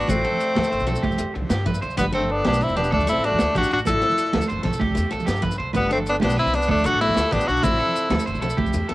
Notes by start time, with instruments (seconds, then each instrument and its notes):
Already playing: alto saxophone B3, tenor saxophone D4, clean electric guitar F#4
0.01 low conga, maracas
0.08 upright bass A1, steel-string acoustic guitar A3, alto saxophone A3, tenor saxophone C4, kick, ride, high conga, low conga, maracas
0.24 steel-string acoustic guitar C4, clean electric guitar A4, ride, low conga
0.31 low conga
0.40 ride, maracas
0.55 upright bass D2, steel-string acoustic guitar A3, clean electric guitar A4, snare, ride, high conga, low conga
0.64 maracas
0.71 upright bass F#1, clean electric guitar C5, ride, maracas
0.79 upright bass B1, maracas
0.87 steel-string acoustic guitar C4, clean electric guitar A4, ride, low conga, maracas
0.95 maracas
1.02 upright bass C2, clean electric guitar G4, kick, ride, high conga
1.10 low conga, maracas
1.18 upright bass E2, steel-string acoustic guitar A3, ride, maracas
1.26 low conga
1.34 upright bass C2, steel-string acoustic guitar B3, muted clean electric guitar stroke, ride
1.42 low conga
1.50 upright bass G2, clean electric guitar G4, snare, ride, high conga, maracas
1.65 steel-string acoustic guitar A3, clean electric guitar B4, kick, ride, low conga
1.74 maracas
1.82 upright bass C2, clean electric guitar C5, ride, maracas
1.89 low conga, maracas
1.97 upright bass G1, alto saxophone G3, steel-string acoustic guitar B3, tenor saxophone B3, clean electric guitar B4, kick, ride, high conga, low conga, maracas
2.12 alto saxophone A3, tenor saxophone C4, steel-string acoustic guitar D4, clean electric guitar A4, ride, low conga
2.21 low conga
2.29 alto saxophone B3, tenor saxophone D4, ride
2.45 upright bass B1, steel-string acoustic guitar B3, alto saxophone B3, tenor saxophone D4, clean electric guitar G4, snare, ride, high conga, low conga
2.53 maracas
2.61 upright bass G1, alto saxophone C4, tenor saxophone E4, ride, maracas
2.69 upright bass E1, maracas
2.76 alto saxophone B3, tenor saxophone D4, steel-string acoustic guitar D4, clean electric guitar G4, snare, ride, low conga
2.84 maracas
2.91 upright bass D2, tenor saxophone D4, clean electric guitar A4, kick, ride, high conga
2.96 alto saxophone A3
3.00 low conga, maracas
3.07 steel-string acoustic guitar A3, tenor saxophone E4, clean electric guitar A4, ride, maracas
3.12 alto saxophone C4, low conga
3.18 upright bass A1
3.23 alto saxophone A3, steel-string acoustic guitar B3, tenor saxophone D4, clean electric guitar F#4, ride
3.31 upright bass F#2, low conga
3.39 upright bass D2, clean electric guitar A4, snare, ride, high conga, maracas
3.54 upright bass A1, steel-string acoustic guitar A3, alto saxophone D4, tenor saxophone F#4, clean electric guitar G4, kick, ride, low conga
3.63 maracas
3.70 upright bass A1, alto saxophone D4, clean electric guitar F#4, tenor saxophone F#4, ride, maracas
3.78 low conga, maracas
3.85 upright bass A1, steel-string acoustic guitar A3, alto saxophone E4, tenor saxophone A4, kick, ride, high conga, low conga, maracas
3.94 low conga
4.01 steel-string acoustic guitar C4, clean electric guitar A4, ride
4.10 low conga, maracas
4.17 ride, low conga, maracas
4.26 maracas
4.33 upright bass D2, steel-string acoustic guitar E3, clean electric guitar A4, snare, ride, high conga, low conga
4.41 maracas
4.49 upright bass F#1, clean electric guitar C5, ride, maracas
4.59 upright bass B1
4.63 steel-string acoustic guitar C4, clean electric guitar A4, kick, snare, ride, low conga
4.73 maracas
4.79 upright bass C2, clean electric guitar G4, kick, ride, high conga
4.87 low conga
4.95 upright bass E2, steel-string acoustic guitar A3, ride, maracas
5.11 upright bass C2, steel-string acoustic guitar B3, clean electric guitar A4, ride, maracas
5.19 low conga, maracas
5.26 upright bass G2, clean electric guitar G4, snare, ride, high conga, low conga, maracas
5.35 low conga, maracas
5.42 steel-string acoustic guitar A3, clean electric guitar B4, kick, ride, low conga
5.51 low conga, maracas
5.58 upright bass C2, clean electric guitar C5, ride
5.73 upright bass G1, steel-string acoustic guitar B3, tenor saxophone B3, clean electric guitar B4, kick, ride, high conga, low conga, maracas
5.77 alto saxophone G3
5.89 tenor saxophone C4, steel-string acoustic guitar D4, clean electric guitar A4, ride, low conga
5.94 alto saxophone A3, low conga
6.06 alto saxophone B3, tenor saxophone D4, ride, maracas
6.20 upright bass B1, steel-string acoustic guitar B3, tenor saxophone D4, clean electric guitar G4, snare, ride, high conga, low conga
6.25 alto saxophone B3
6.30 maracas
6.37 upright bass G1, alto saxophone C4, tenor saxophone E4, clean electric guitar B4, ride, maracas
6.46 upright bass C2, maracas
6.53 alto saxophone B3, steel-string acoustic guitar D4, tenor saxophone D4, muted clean electric guitar stroke, ride, maracas
6.62 maracas
6.68 upright bass D2, alto saxophone A3, tenor saxophone D4, clean electric guitar A4, kick, ride, high conga
6.76 low conga, maracas
6.84 upright bass C2, steel-string acoustic guitar A3, alto saxophone D4, tenor saxophone F#4, clean electric guitar A4, ride, maracas
6.92 upright bass A1, low conga
7.00 alto saxophone A3, steel-string acoustic guitar B3, tenor saxophone E4, clean electric guitar F#4, ride
7.08 upright bass F#2, low conga
7.14 upright bass D2, clean electric guitar A4, snare, ride, high conga, maracas
7.31 upright bass A1, steel-string acoustic guitar A3, alto saxophone B3, tenor saxophone D4, clean electric guitar G4, kick, ride, low conga
7.41 maracas
7.47 upright bass B1, alto saxophone D4, clean electric guitar F#4, tenor saxophone F#4, ride, maracas
7.55 low conga, maracas
7.63 upright bass A1, steel-string acoustic guitar A3, alto saxophone C4, tenor saxophone E4, kick, ride, high conga, low conga, maracas
7.78 clean electric guitar A4, ride, low conga
7.86 low conga
7.95 ride, maracas
8.10 upright bass D2, steel-string acoustic guitar A3, clean electric guitar A4, snare, ride, high conga, low conga
8.19 maracas
8.26 upright bass F#1, clean electric guitar C5, ride, maracas
8.35 upright bass B1, maracas
8.41 steel-string acoustic guitar C4, clean electric guitar A4, ride, low conga, maracas
8.50 maracas
8.57 upright bass C2, clean electric guitar G4, kick, ride, high conga
8.64 low conga, maracas
8.73 upright bass E2, steel-string acoustic guitar A3, ride, maracas
8.80 low conga
8.88 upright bass C2, steel-string acoustic guitar B3, clean electric guitar A4, ride